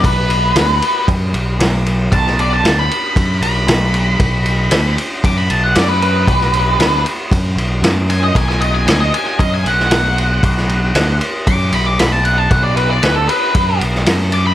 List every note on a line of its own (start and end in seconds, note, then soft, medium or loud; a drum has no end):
0.04 0.52 B1 medium
0.04 1.06 B4 medium
0.04 kick loud
0.04 ride medium
0.30 ride medium
0.56 0.80 D2 medium
0.56 snare loud
0.56 ride medium
0.82 ride medium
1.08 1.32 F#2 medium
1.08 kick loud
1.08 ride medium
1.33 1.58 B1 medium
1.33 ride medium
1.59 2.08 B1 medium
1.59 snare loud
1.59 ride medium
1.86 ride medium
2.12 2.60 B1 medium
2.12 2.37 A5 loud
2.12 kick loud
2.12 ride medium
2.27 snare soft
2.39 2.52 D5 medium
2.39 ride medium
2.53 2.77 A5 medium
2.64 2.88 D2 medium
2.64 snare loud
2.64 ride medium
2.79 3.41 B5 medium
2.91 ride medium
3.16 3.40 F#2 medium
3.16 kick loud
3.16 ride medium
3.41 3.66 B1 medium
3.41 4.94 B5 loud
3.41 ride medium
3.67 4.15 B1 loud
3.67 snare loud
3.67 ride loud
3.94 ride medium
4.20 4.68 B1 medium
4.20 kick loud
4.20 ride loud
4.46 ride medium
4.71 4.96 D2 medium
4.71 snare loud
4.71 ride loud
4.98 ride medium
5.24 5.48 F#2 medium
5.24 5.37 D6 loud
5.24 kick loud
5.24 ride medium
5.37 5.50 B5 medium
5.50 5.74 B1 medium
5.50 5.64 A5 medium
5.50 ride medium
5.64 5.76 F#5 medium
5.75 6.24 F#2 loud
5.75 5.89 D5 medium
5.75 snare loud
5.75 ride loud
5.89 6.01 B4 medium
6.02 7.03 B4 loud
6.02 ride medium
6.27 6.76 B1 medium
6.27 kick loud
6.27 ride medium
6.41 snare soft
6.54 ride medium
6.79 7.03 D2 medium
6.79 snare loud
6.79 ride medium
7.06 ride medium
7.31 7.55 F#2 medium
7.31 kick loud
7.31 ride medium
7.56 7.81 B1 medium
7.56 ride medium
7.82 8.31 F#2 loud
7.82 snare loud
7.82 ride medium
8.10 8.22 G#5 loud
8.10 ride medium
8.24 8.35 D#5 medium
8.35 8.83 B1 medium
8.35 8.48 G#5 medium
8.35 kick loud
8.35 ride loud
8.49 8.61 G#5 loud
8.49 snare soft
8.61 8.73 D#5 loud
8.61 ride medium
8.74 8.86 G#5 medium
8.86 9.10 D2 medium
8.86 9.00 G#5 medium
8.86 snare loud
8.86 ride loud
9.00 9.13 D#5 loud
9.14 9.26 G#5 medium
9.14 ride medium
9.27 9.39 G#5 medium
9.39 9.63 F#2 medium
9.39 9.51 D#5 loud
9.39 kick loud
9.39 ride medium
9.54 9.67 G#5 medium
9.65 9.89 B1 medium
9.65 11.18 F#5 loud
9.65 ride medium
9.80 snare soft
9.90 10.39 B1 loud
9.90 snare loud
9.90 ride loud
10.18 ride medium
10.43 10.91 B1 loud
10.43 kick loud
10.43 ride loud
10.57 snare soft
10.69 ride medium
10.95 11.19 D2 medium
10.95 snare loud
10.95 ride medium
11.21 ride medium
11.47 11.71 F#2 medium
11.47 11.72 D6 loud
11.47 kick loud
11.47 ride loud
11.72 11.97 B1 medium
11.72 11.86 B5 medium
11.72 ride medium
11.86 11.99 D6 medium
11.99 12.48 B1 loud
11.99 12.12 B5 medium
11.99 snare loud
11.99 ride loud
12.12 12.24 A5 medium
12.24 12.38 F#5 loud
12.24 ride medium
12.38 12.50 A5 medium
12.50 12.99 B1 medium
12.50 12.63 F#5 loud
12.50 kick loud
12.50 ride medium
12.64 12.76 D5 loud
12.77 12.90 B4 medium
12.77 ride medium
12.90 13.03 D5 loud
13.03 13.27 D2 medium
13.03 13.15 B4 medium
13.03 snare loud
13.03 ride medium
13.16 13.28 A4 loud
13.28 13.79 B4 loud
13.28 ride medium
13.55 13.79 F#2 medium
13.55 kick loud
13.55 ride loud
13.81 14.05 B1 medium
13.81 ride medium
13.95 snare soft
14.06 14.54 F#2 loud
14.06 snare loud
14.06 ride loud
14.32 14.46 D6 loud
14.32 ride medium
14.47 14.54 B5 medium